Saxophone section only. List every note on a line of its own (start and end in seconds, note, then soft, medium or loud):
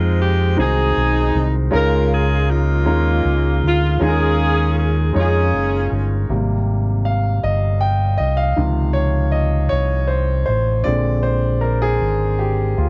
0.00 0.55 G#3 medium
0.00 0.55 C4 medium
0.00 0.21 F4 medium
0.22 0.57 G4 medium
0.60 1.57 D#4 medium
0.60 1.45 G#4 medium
1.74 2.84 D#4 medium
1.74 2.50 F4 medium
1.74 2.09 A#4 loud
2.14 2.51 G#4 medium
2.50 3.60 G#3 medium
2.50 3.60 A#3 medium
2.50 3.65 F4 medium
3.68 4.00 F4 medium
4.01 5.12 C#4 medium
4.01 5.12 F4 medium
4.01 4.78 G#4 loud
4.79 5.14 G#4 medium
5.17 6.27 C#4 medium
5.17 6.27 F4 medium
5.17 5.99 G#4 medium